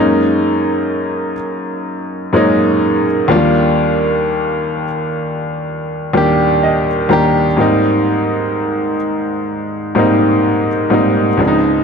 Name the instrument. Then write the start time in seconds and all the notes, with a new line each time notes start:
grand piano
Already playing: F#2 G#3 A#3 C#4
0.00 D#4
2.33 F#2 G#3 A#3 C#4 D#4
3.28 D#2 F3 A#3 D4 F4
3.35 G3
6.13 D#2 G3 A#3 D4 G4
6.63 D#5
7.09 D#2 G3 A#3 D4 G4 A#5
7.57 G#2 G3 A#3 C4 D#4
9.95 G#2 G3 A#3 C4 D#4
10.90 G#2 G3 A#3 C4 D#4
11.37 C#2 F3 G#3 C4 D4
11.47 D#4